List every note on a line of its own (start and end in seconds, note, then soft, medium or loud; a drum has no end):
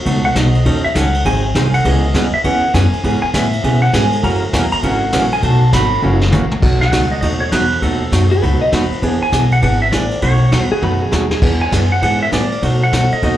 0.05 0.35 C#2 loud
0.05 0.26 B2 medium
0.05 0.26 F#3 medium
0.05 0.26 A3 medium
0.05 0.26 D#4 medium
0.05 0.27 F#4 medium
0.05 kick soft
0.05 ride medium
0.25 0.35 F#5 loud
0.35 0.64 B1 loud
0.35 0.47 B2 medium
0.35 0.47 F#3 medium
0.35 0.47 A3 medium
0.35 0.47 D#4 medium
0.35 0.47 F#4 medium
0.35 0.81 D#5 medium
0.35 kick soft
0.35 snare medium
0.35 hi-hat pedal medium
0.35 ride medium
0.55 ride soft
0.65 0.83 D#2 loud
0.65 0.86 D#3 medium
0.65 0.86 F#3 medium
0.65 0.86 C#4 medium
0.65 0.86 D#4 medium
0.65 0.86 A4 medium
0.65 kick soft
0.65 ride medium
0.84 0.95 E5 loud
0.84 muted upright bass stroke soft
0.95 1.24 C#2 loud
0.95 1.06 D#3 medium
0.95 1.06 F#3 medium
0.95 1.07 C#4 medium
0.95 1.07 D#4 medium
0.95 1.07 A4 medium
0.95 1.23 F#5 medium
0.95 kick soft
0.95 snare medium
0.95 hi-hat pedal medium
0.95 ride medium
1.14 ride medium
1.25 1.54 G#1 medium
1.25 1.45 D#3 medium
1.25 1.46 F#3 medium
1.25 1.46 C4 medium
1.25 1.46 D#4 medium
1.25 1.46 G#4 medium
1.25 1.71 G#5 loud
1.25 kick soft
1.25 ride medium
1.55 1.84 C2 medium
1.55 1.66 D#3 medium
1.55 1.66 F#3 medium
1.55 1.67 C4 medium
1.55 1.67 D#4 medium
1.55 1.67 G#4 medium
1.55 kick soft
1.55 snare medium
1.55 hi-hat pedal medium
1.55 ride medium
1.74 1.85 F#5 medium
1.74 ride medium
1.85 2.14 C#2 medium
1.85 2.05 C#3 medium
1.85 2.05 E3 medium
1.85 2.05 B3 medium
1.85 2.05 C#4 medium
1.85 2.06 G#4 medium
1.85 2.31 D#5 medium
1.85 kick soft
1.85 ride medium
2.14 2.32 D#2 medium
2.14 2.26 C#3 medium
2.14 2.26 E3 medium
2.14 2.26 B3 medium
2.14 2.26 C#4 medium
2.14 2.26 G#4 medium
2.14 kick soft
2.14 snare medium
2.14 hi-hat pedal medium
2.14 ride medium
2.33 2.44 E5 medium
2.33 muted upright bass stroke soft
2.44 2.73 E2 medium
2.44 2.65 C#3 medium
2.44 2.65 E3 medium
2.44 2.65 B3 medium
2.44 2.65 C#4 medium
2.44 2.65 G#4 medium
2.44 2.72 F#5 medium
2.44 kick soft
2.44 ride medium
2.74 2.92 F#2 medium
2.74 2.85 C#3 medium
2.74 2.86 E3 medium
2.74 2.86 B3 medium
2.74 2.86 C#4 medium
2.74 2.86 G#4 medium
2.74 3.20 G#5 medium
2.74 kick soft
2.74 snare medium
2.74 hi-hat pedal medium
2.74 ride medium
2.93 muted upright bass stroke soft
2.93 ride soft
3.04 3.22 G#2 medium
3.04 3.24 C#3 medium
3.04 3.24 E3 medium
3.04 3.24 B3 medium
3.04 3.25 C#4 medium
3.04 3.25 G#4 medium
3.04 kick soft
3.04 ride medium
3.22 3.33 G#5 loud
3.22 muted upright bass stroke soft
3.34 3.63 A2 medium
3.34 3.45 C#3 medium
3.34 3.45 E3 medium
3.34 3.46 B3 medium
3.34 3.46 C#4 medium
3.34 3.46 G#4 medium
3.34 3.79 E5 medium
3.34 kick soft
3.34 snare medium
3.34 hi-hat pedal medium
3.34 ride medium
3.53 ride medium
3.64 3.93 B2 medium
3.64 3.84 C#3 medium
3.64 3.84 E3 medium
3.64 3.84 B3 medium
3.64 3.84 C#4 medium
3.64 3.85 G#4 medium
3.64 kick soft
3.64 ride medium
3.82 3.93 F#5 loud
3.93 4.23 G#2 medium
3.93 4.05 C#3 medium
3.93 4.05 E3 medium
3.93 4.05 B3 medium
3.93 4.05 C#4 medium
3.93 4.05 G#4 medium
3.93 4.21 G#5 medium
3.93 kick soft
3.93 snare medium
3.93 hi-hat pedal medium
3.93 ride medium
4.12 ride medium
4.23 4.52 F#2 medium
4.23 4.43 C#3 medium
4.23 4.44 E3 medium
4.23 4.44 A#3 medium
4.23 4.44 C#4 medium
4.23 4.44 F#4 medium
4.23 4.69 A#5 medium
4.23 kick soft
4.23 ride medium
4.53 4.71 E2 loud
4.53 4.65 C#3 medium
4.53 4.65 E3 medium
4.53 4.65 A#3 medium
4.53 4.65 C#4 medium
4.53 4.65 F#4 medium
4.53 kick soft
4.53 snare medium
4.53 hi-hat pedal medium
4.53 ride medium
4.72 4.83 A#5 loud
4.72 muted upright bass stroke soft
4.72 ride medium
4.83 5.12 G#1 loud
4.83 5.03 C#3 medium
4.83 5.04 E3 medium
4.83 5.04 A#3 medium
4.83 5.04 C#4 medium
4.83 5.04 F#4 medium
4.83 5.29 F#5 loud
4.83 kick soft
4.83 ride medium
5.12 5.42 A#1 loud
5.12 5.24 C#3 medium
5.12 5.25 E3 medium
5.12 5.25 A#3 medium
5.12 5.25 C#4 medium
5.12 5.25 F#4 medium
5.12 kick soft
5.12 snare medium
5.12 hi-hat pedal medium
5.12 ride medium
5.32 5.43 G#5 loud
5.32 ride soft
5.43 5.72 B1 medium
5.43 5.63 B2 medium
5.43 5.63 F#3 medium
5.43 5.63 A3 medium
5.43 5.64 D#4 medium
5.43 5.64 F#4 medium
5.43 5.73 A5 medium
5.43 kick soft
5.43 ride medium
5.72 6.02 G#1 loud
5.72 5.84 B2 medium
5.72 5.84 F#3 medium
5.72 5.84 A3 medium
5.72 5.84 D#4 medium
5.72 5.85 F#4 medium
5.72 6.01 B5 loud
5.72 kick soft
5.72 snare medium
5.72 hi-hat pedal medium
5.72 ride medium
6.02 6.31 F#1 loud
6.02 6.23 C#3 medium
6.02 6.23 E3 medium
6.02 6.23 A#3 medium
6.02 6.23 C#4 medium
6.02 6.24 F#4 medium
6.21 snare medium
6.32 6.62 A#1 loud
6.32 6.44 C#3 medium
6.32 6.44 E3 medium
6.32 6.44 A#3 medium
6.32 6.44 C#4 medium
6.32 6.44 F#4 medium
6.32 hi-hat pedal medium
6.32 high tom medium
6.51 mid tom medium
6.62 6.91 B1 medium
6.62 6.83 B2 medium
6.62 6.83 F#3 medium
6.62 6.83 A3 medium
6.62 6.83 D#4 medium
6.62 6.83 F#4 medium
6.62 kick medium
6.62 crash medium
6.81 7.12 F#5 loud
6.81 snare soft
6.92 7.22 C#2 medium
6.92 7.03 B2 medium
6.92 7.04 F#3 medium
6.92 7.04 A3 medium
6.92 7.04 D#4 medium
6.92 7.04 F#4 medium
6.92 kick soft
6.92 snare medium
6.92 hi-hat pedal medium
6.92 ride medium
7.12 7.20 D#5 medium
7.21 7.51 D#2 medium
7.21 7.43 B2 medium
7.21 7.43 F#3 medium
7.21 7.43 A3 medium
7.21 7.43 D#4 medium
7.21 7.43 F#4 medium
7.21 7.26 D#5 loud
7.21 kick soft
7.21 ride medium
7.40 7.51 C#5 medium
7.52 7.81 E2 medium
7.52 7.64 B2 medium
7.52 7.64 F#3 medium
7.52 7.64 A3 medium
7.52 7.64 D#4 medium
7.52 7.64 F#4 medium
7.52 7.82 B4 medium
7.52 kick soft
7.52 snare medium
7.52 hi-hat pedal medium
7.52 ride medium
7.82 8.11 D#2 medium
7.82 8.03 B2 medium
7.82 8.03 F#3 medium
7.82 8.03 A3 medium
7.82 8.03 D#4 medium
7.82 8.03 F#4 medium
7.82 8.38 A4 medium
7.82 kick soft
7.82 ride medium
8.12 8.41 F#2 medium
8.12 8.24 B2 medium
8.12 8.24 F#3 medium
8.12 8.24 A3 medium
8.12 8.24 D#4 medium
8.12 8.24 F#4 medium
8.12 kick soft
8.12 snare medium
8.12 hi-hat pedal medium
8.12 ride medium
8.31 8.42 G#4 medium
8.31 ride soft
8.42 8.60 C#2 medium
8.42 8.63 B2 medium
8.42 8.63 F#3 medium
8.42 8.63 A3 medium
8.42 8.63 D#4 medium
8.42 8.63 F#4 medium
8.42 8.61 B4 medium
8.42 kick soft
8.42 ride medium
8.61 8.72 D#5 medium
8.72 8.90 D#2 loud
8.72 8.83 B2 medium
8.72 8.84 F#3 medium
8.72 8.84 A3 medium
8.72 8.84 D#4 medium
8.72 8.84 F#4 medium
8.72 9.01 B4 medium
8.72 kick soft
8.72 snare medium
8.72 hi-hat pedal medium
8.72 ride medium
8.91 muted upright bass stroke soft
8.91 ride soft
9.02 9.20 E2 loud
9.02 9.23 E3 medium
9.02 9.23 B3 medium
9.02 9.23 D4 medium
9.02 9.23 G#4 medium
9.02 kick soft
9.02 ride medium
9.21 9.50 G#5 loud
9.21 muted upright bass stroke soft
9.32 9.61 B1 loud
9.32 9.44 E3 medium
9.32 9.44 B3 medium
9.32 9.44 D4 medium
9.32 9.44 G#4 medium
9.32 kick soft
9.32 snare medium
9.32 hi-hat pedal medium
9.32 ride medium
9.51 9.62 F#5 loud
9.51 ride soft
9.62 9.91 G#1 medium
9.62 9.83 E3 medium
9.62 9.83 B3 medium
9.62 9.83 D4 medium
9.62 9.83 G#4 medium
9.62 9.82 F#5 loud
9.62 kick soft
9.62 ride medium
9.82 9.87 E5 medium
9.92 10.21 A1 medium
9.92 10.04 E3 medium
9.92 10.04 B3 medium
9.92 10.04 D4 medium
9.92 10.04 G#4 medium
9.92 10.22 D5 medium
9.92 kick soft
9.92 snare medium
9.92 hi-hat pedal medium
9.92 ride medium
10.11 ride medium
10.22 10.51 B1 medium
10.22 10.43 B2 medium
10.22 10.43 F#3 medium
10.22 10.43 A3 medium
10.22 10.43 D#4 medium
10.22 10.43 F#4 medium
10.22 10.65 C#5 medium
10.22 kick soft
10.22 ride medium
10.52 10.70 E2 loud
10.52 10.63 B2 medium
10.52 10.64 F#3 medium
10.52 10.64 A3 medium
10.52 10.64 D#4 medium
10.52 10.64 F#4 medium
10.52 kick soft
10.52 snare medium
10.52 hi-hat pedal medium
10.52 ride medium
10.65 10.78 B4 medium
10.72 10.82 G#4 medium
10.72 muted upright bass stroke soft
10.82 11.11 F#2 medium
10.82 11.03 B2 medium
10.82 11.03 F#3 medium
10.82 11.03 A3 medium
10.82 11.03 D#4 medium
10.82 11.03 F#4 medium
10.82 11.01 B4 medium
10.82 high tom soft
11.01 11.30 G#4 medium
11.12 11.41 D#2 medium
11.12 11.23 B2 medium
11.12 11.24 F#3 medium
11.12 11.24 A3 medium
11.12 11.24 D#4 medium
11.12 11.24 F#4 medium
11.12 snare medium
11.12 hi-hat pedal medium
11.31 11.51 G#4 medium
11.31 snare medium
11.42 11.71 E2 medium
11.42 11.63 E3 medium
11.42 11.63 B3 medium
11.42 11.63 D4 medium
11.42 11.63 G#4 medium
11.42 kick medium
11.42 crash medium
11.61 11.92 G#5 loud
11.72 12.02 F#2 medium
11.72 11.84 E3 medium
11.72 11.84 B3 medium
11.72 11.84 D4 medium
11.72 11.84 G#4 medium
11.72 kick soft
11.72 snare medium
11.72 hi-hat pedal medium
11.72 ride medium
11.92 12.02 F#5 loud
12.02 12.32 G#2 medium
12.02 12.23 E3 medium
12.02 12.23 B3 medium
12.02 12.24 D4 medium
12.02 12.24 G#4 medium
12.02 12.21 F#5 loud
12.02 kick soft
12.02 ride medium
12.23 12.32 E5 medium
12.32 12.62 A2 medium
12.32 12.44 E3 medium
12.32 12.44 B3 medium
12.32 12.44 D4 medium
12.32 12.44 G#4 medium
12.32 12.63 D5 loud
12.32 kick soft
12.32 snare medium
12.32 hi-hat pedal medium
12.32 ride medium
12.52 ride soft
12.62 12.83 B2 medium
12.62 12.92 B2 medium
12.62 12.83 F#3 medium
12.62 12.83 A3 medium
12.62 12.84 D#4 medium
12.62 12.84 F#4 medium
12.62 kick soft
12.62 ride medium
12.83 13.14 F#5 loud
12.92 13.10 B1 medium
12.92 13.04 B2 medium
12.92 13.04 F#3 medium
12.92 13.04 A3 medium
12.92 13.05 D#4 medium
12.92 13.05 F#4 medium
12.92 kick soft
12.92 snare medium
12.92 hi-hat pedal medium
12.92 ride medium
13.12 13.22 D#5 medium
13.12 muted upright bass stroke soft
13.12 ride soft
13.22 13.37 D#2 medium
13.22 13.37 B2 medium
13.22 13.37 F#3 medium
13.22 13.37 A3 medium
13.22 13.37 D#4 medium
13.22 13.37 F#4 medium
13.22 13.37 D#5 loud
13.22 kick soft
13.22 ride medium